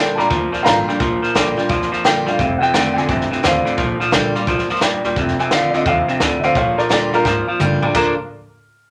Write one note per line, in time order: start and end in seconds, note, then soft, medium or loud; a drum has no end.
0.00 0.18 A#1 medium
0.00 0.16 A#2 medium
0.00 0.29 A#2 loud
0.00 0.17 D3 medium
0.00 0.16 G3 medium
0.00 0.18 A#3 loud
0.00 0.18 D4 medium
0.00 0.17 F4 loud
0.00 0.18 G5 loud
0.15 0.30 F2 medium
0.15 0.29 A#2 medium
0.15 0.29 G3 medium
0.15 0.30 F4 medium
0.15 0.17 A5 medium
0.15 0.63 A#5 loud
0.15 snare soft
0.21 0.32 D4 medium
0.30 0.52 D2 medium
0.30 0.98 F2 medium
0.30 0.50 A#2 medium
0.30 0.51 F3 loud
0.30 kick loud
0.30 snare soft
0.52 0.64 A#2 medium
0.52 0.64 F3 medium
0.52 muted upright bass stroke medium
0.52 snare soft
0.63 0.88 G#1 medium
0.63 0.85 A#2 medium
0.63 0.87 D3 medium
0.63 0.86 G3 loud
0.63 0.87 A#3 medium
0.63 0.88 D4 loud
0.63 1.30 F5 medium
0.63 1.32 A#5 loud
0.63 snare loud
0.63 hi-hat pedal medium
0.68 0.86 F4 loud
0.87 0.99 A#2 medium
0.87 0.99 G3 medium
0.87 1.00 D4 medium
0.87 0.99 F4 medium
0.87 muted upright bass stroke medium
0.87 snare soft
1.00 1.22 A#1 loud
1.00 1.67 A#2 loud
1.00 1.20 A#2 medium
1.00 1.20 F3 loud
1.00 kick loud
1.00 snare soft
1.22 1.33 A#2 medium
1.22 1.34 F3 medium
1.22 snare soft
1.35 1.57 A#1 medium
1.35 1.55 A#2 medium
1.35 1.56 D3 loud
1.35 1.55 G3 medium
1.35 1.56 A#3 loud
1.35 1.57 D4 loud
1.35 1.56 F4 loud
1.35 snare loud
1.35 hi-hat pedal medium
1.57 1.68 A#2 medium
1.57 1.69 G3 medium
1.57 1.70 D4 soft
1.57 1.69 F4 medium
1.57 muted upright bass stroke medium
1.57 snare soft
1.69 1.91 A#1 medium
1.69 2.36 F2 medium
1.69 1.90 A#2 medium
1.69 1.90 F3 loud
1.69 kick loud
1.69 snare soft
1.82 snare soft
1.92 2.03 A#2 medium
1.92 2.03 F3 medium
1.92 snare soft
2.04 2.26 F2 medium
2.04 2.25 A#2 medium
2.04 2.26 D3 loud
2.04 2.25 G3 medium
2.04 2.26 A#3 loud
2.04 2.27 D4 loud
2.04 2.25 F4 loud
2.04 2.26 G5 medium
2.04 snare loud
2.04 hi-hat pedal medium
2.26 2.39 G1 medium
2.26 2.38 A#2 medium
2.26 2.38 G3 medium
2.26 2.39 D4 soft
2.26 2.38 F4 medium
2.26 2.61 F5 medium
2.26 snare soft
2.38 2.61 F1 loud
2.38 2.59 F2 medium
2.38 3.06 F2 medium
2.38 2.59 C3 medium
2.38 kick loud
2.38 snare soft
2.58 2.72 F2 medium
2.58 2.72 C3 medium
2.58 2.60 F#5 medium
2.58 muted upright bass stroke medium
2.58 snare soft
2.62 2.92 G5 loud
2.73 2.95 F1 loud
2.73 2.93 F2 medium
2.73 2.94 D3 loud
2.73 2.95 D#3 medium
2.73 2.96 A3 medium
2.73 2.96 C4 loud
2.73 2.94 F4 loud
2.73 snare loud
2.73 hi-hat pedal medium
2.93 3.08 C2 medium
2.93 3.07 F2 medium
2.93 3.07 D3 medium
2.93 3.08 F4 medium
2.93 2.95 G5 medium
2.93 snare soft
2.98 3.09 C4 soft
2.98 3.43 G#5 medium
3.09 3.30 A1 medium
3.09 3.29 F2 medium
3.09 3.42 G2 medium
3.09 3.29 C3 loud
3.09 kick loud
3.09 snare soft
3.21 snare soft
3.31 3.42 F2 medium
3.31 3.42 C3 medium
3.31 muted upright bass stroke medium
3.31 snare soft
3.43 3.65 D#2 medium
3.43 3.63 F2 medium
3.43 3.77 A2 loud
3.43 3.63 D3 loud
3.43 4.09 C5 medium
3.43 4.11 F5 medium
3.43 snare loud
3.43 hi-hat pedal loud
3.65 3.76 F2 medium
3.65 3.77 D3 loud
3.65 muted upright bass stroke medium
3.65 snare soft
3.77 4.00 A#1 loud
3.77 3.98 A#2 medium
3.77 4.45 A#2 medium
3.77 3.98 F3 loud
3.77 kick loud
3.77 snare soft
4.00 4.11 A#2 medium
4.00 4.11 F3 medium
4.00 muted upright bass stroke medium
4.00 snare soft
4.11 4.34 A#1 medium
4.11 4.33 A#2 medium
4.11 4.33 D3 medium
4.11 4.33 G3 medium
4.11 4.34 A#3 loud
4.11 4.34 D4 medium
4.11 4.34 F4 loud
4.11 snare loud
4.11 hi-hat pedal medium
4.35 4.46 A#2 medium
4.35 4.47 G3 medium
4.35 4.48 D4 soft
4.35 4.47 F4 medium
4.35 snare soft
4.47 4.69 A#1 loud
4.47 4.81 G#2 medium
4.47 4.68 A#2 medium
4.47 4.68 F3 loud
4.47 kick loud
4.47 snare soft
4.58 snare soft
4.69 4.81 A#2 medium
4.69 4.81 F3 medium
4.69 muted upright bass stroke medium
4.69 snare soft
4.76 snare soft
4.81 5.03 F2 medium
4.81 5.16 G2 medium
4.81 5.02 A#2 medium
4.81 5.02 G3 medium
4.81 snare loud
4.81 hi-hat pedal medium
5.04 5.16 D#2 medium
5.04 5.16 A#2 medium
5.04 5.16 G3 medium
5.04 snare soft
5.16 5.36 F1 medium
5.16 5.84 F2 loud
5.16 5.37 F2 medium
5.16 5.37 C3 medium
5.16 kick loud
5.16 snare soft
5.28 snare soft
5.39 5.50 F2 medium
5.39 5.51 C3 medium
5.39 5.52 G#5 medium
5.39 snare soft
5.51 5.71 A#1 medium
5.51 5.72 F2 medium
5.51 5.72 D3 loud
5.51 5.73 D#3 medium
5.51 5.74 A3 medium
5.51 5.74 C4 medium
5.51 5.73 F4 loud
5.51 5.73 F5 medium
5.51 snare loud
5.51 hi-hat pedal medium
5.70 5.85 D2 medium
5.70 5.85 F2 medium
5.70 5.85 D3 medium
5.70 5.86 F4 medium
5.70 5.72 D5 medium
5.70 snare soft
5.75 5.87 C4 soft
5.75 5.86 D#5 medium
5.86 6.06 D#2 medium
5.86 6.06 F2 medium
5.86 6.20 G2 medium
5.86 6.06 C3 loud
5.86 6.08 F5 loud
5.86 kick loud
5.86 snare soft
6.08 6.20 F2 medium
6.08 6.20 C3 medium
6.08 muted upright bass stroke medium
6.08 snare soft
6.20 6.41 D2 medium
6.20 6.41 F2 medium
6.20 6.55 A2 medium
6.20 6.41 D3 medium
6.20 snare loud
6.20 hi-hat pedal medium
6.40 6.55 F2 medium
6.40 6.55 C5 medium
6.40 6.42 E5 medium
6.40 muted upright bass stroke medium
6.40 snare soft
6.44 6.55 D3 medium
6.44 6.55 F5 loud
6.55 6.75 A#1 medium
6.55 7.23 A#2 medium
6.55 6.76 A#2 medium
6.55 6.76 F3 medium
6.55 6.77 C#5 medium
6.55 6.78 F5 medium
6.55 kick loud
6.55 snare soft
6.78 6.89 A#2 medium
6.78 6.89 F3 medium
6.78 6.90 A#4 medium
6.78 6.90 D5 medium
6.78 muted upright bass stroke medium
6.78 snare soft
6.89 7.10 D#2 medium
6.89 7.10 A#2 medium
6.89 7.11 D3 medium
6.89 7.11 G3 medium
6.89 7.12 A#3 medium
6.89 7.12 D4 loud
6.89 7.10 F4 loud
6.89 7.12 A#4 medium
6.89 7.13 D5 medium
6.89 snare loud
6.89 hi-hat pedal medium
7.11 7.24 G2 medium
7.11 7.24 A#2 medium
7.11 7.25 G3 medium
7.11 7.25 D4 soft
7.11 7.24 F4 medium
7.11 7.46 F4 loud
7.11 7.48 A#4 loud
7.11 snare soft
7.25 7.93 F2 medium
7.25 7.45 G#2 medium
7.25 7.45 A#2 medium
7.25 7.46 F3 loud
7.25 kick loud
7.25 snare medium
7.48 7.59 A#2 medium
7.48 7.59 F3 medium
7.48 muted upright bass stroke medium
7.60 7.80 G2 medium
7.60 7.80 A#2 medium
7.60 7.82 D3 medium
7.60 7.81 G3 medium
7.60 7.82 A#3 medium
7.60 7.83 D4 loud
7.60 7.81 F4 loud
7.60 hi-hat pedal medium
7.60 mid tom medium
7.82 7.94 A#2 medium
7.82 7.94 G3 medium
7.82 7.96 D4 soft
7.82 7.94 F4 medium
7.82 muted upright bass stroke medium
7.82 floor tom medium
7.95 8.16 A#1 medium
7.95 8.13 A#2 medium
7.95 8.13 D3 medium
7.95 8.13 F3 loud
7.95 8.13 A#3 loud
7.95 8.13 A#3 medium
7.95 8.13 D4 loud
7.95 8.14 D4 loud
7.95 8.14 F4 loud
7.95 8.16 A#4 medium
7.95 kick loud
7.95 crash medium